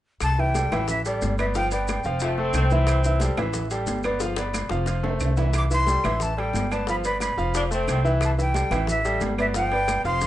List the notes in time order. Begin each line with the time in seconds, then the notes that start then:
0.20 C2 A5, high bongo, high conga, high timbale, claves, maracas
0.38 E3 E4 E5 G5, high bongo, high conga
0.54 G3 G4 A4, high bongo, high conga, high timbale, maracas
0.72 A1 E3 E4 E5, high conga, low conga, high timbale, claves, maracas
0.88 E5, high bongo, high conga, low conga, maracas
1.05 G3 G4 A4 D5, high bongo, high conga, high timbale, maracas
1.22 G1, high bongo, low bongo, high conga, high timbale, maracas
1.38 B3 B4 D5 E5, high conga, high timbale, claves, maracas
1.55 F3 F4 F5 G5, high bongo, maracas
1.71 B3 B4 D5 G5, high bongo, high conga, high timbale, maracas
1.88 G5, high bongo, high conga, high timbale, claves, maracas
2.04 F1 F3 F4 F5, high bongo, high conga, maracas
2.20 F3 A3 F4 F5, high bongo, high conga, high timbale, maracas
2.38 A3 C4 A4 C5, high bongo, high conga
2.53 C2 C4, high bongo, low bongo, high conga, high timbale, low timbale, claves, maracas
2.70 E3 C4 E4 E5, high conga, maracas
2.87 high bongo, high conga, high timbale, claves, maracas
3.04 E3 E4 E5, high bongo, high conga, maracas
3.20 G3 G4 A4, high bongo, high conga, high timbale, maracas
3.37 A1 E3 E4 E5, high bongo, high conga, low conga, high timbale, claves, maracas
3.54 high bongo, high conga, low conga, maracas
3.70 G3 G4 A4, high bongo, high conga, high timbale, maracas
3.86 G1, high bongo, low bongo, high conga, high timbale, maracas
4.03 B3 B4 D5, high conga, high timbale, claves, maracas
4.20 F3 F4 F5, high bongo, high conga, maracas
4.36 B3 B4 D5, high bongo, high conga, high timbale, maracas
4.53 high bongo, high conga, high timbale, claves, maracas
4.69 F1 F3 F4 F5, high bongo, high conga, maracas
4.86 F3 F4 F5, low bongo, high conga, high timbale, maracas
5.03 A3 A4 C5, low bongo, high conga, high timbale
5.20 C2, high conga, high timbale, claves, maracas
5.37 E3 E4 E5, low bongo, high conga, low timbale, maracas
5.53 high bongo, high conga, high timbale, claves, maracas
5.58 D6
5.70 E3 E4 E5 C6, high bongo, high conga, maracas
5.87 G3 G4 A4, high bongo, high conga, high timbale, maracas
6.04 A1 E3 E4 E5, high bongo, high conga, low conga, high timbale, claves, maracas
6.20 A5, high bongo, high conga, low conga, maracas
6.37 G3 G4 A4 G5, high bongo, high conga, high timbale
6.53 G1, high bongo, low bongo, high conga, high timbale, low timbale, maracas
6.71 B3 B4 D5 A5, high conga, high timbale, claves, maracas
6.87 F3 F4 F5 B5, high bongo, high conga, maracas
7.04 B3 B4 D5 B5, high bongo, high conga, high timbale, maracas
7.20 B5, high bongo, high conga, high timbale, claves, maracas
7.37 F1 F3 F4 F5, high bongo, high conga, maracas
7.54 F3 D4 F4 F5, high bongo, high conga, high timbale, maracas
7.71 A3 C4 A4 C5, high bongo, high conga, maracas
7.88 C2 C4, high bongo, low bongo, high conga, high timbale, low timbale, claves, maracas
8.04 E3 E4 E5, maracas
8.21 high bongo, high conga, high timbale, claves, maracas
8.25 A5
8.37 E3 E4 E5, high bongo, high conga, maracas
8.41 G5
8.54 G3 G4 A4, high bongo, high conga, high timbale, maracas
8.71 A1 E3 E4 E5, high bongo, high conga, low conga, high timbale, claves, maracas
8.87 E5, high bongo, high conga, low conga, maracas
9.04 G3 G4 A4, high bongo, high conga, high timbale, maracas
9.21 G1, high bongo, low bongo, high conga, high timbale, low timbale, maracas
9.38 B3 B4 D5 E5, high conga, high timbale, claves, maracas
9.54 F3 F4 F5 G5, high bongo, high conga, maracas
9.71 B3 B4 D5, high bongo, high conga, high timbale
9.88 high bongo, high conga, high timbale, claves, maracas
10.04 F1 F3 F4 F5 C6, high bongo, high conga, maracas
10.21 F3 F4 F5, high bongo, high conga, high timbale, maracas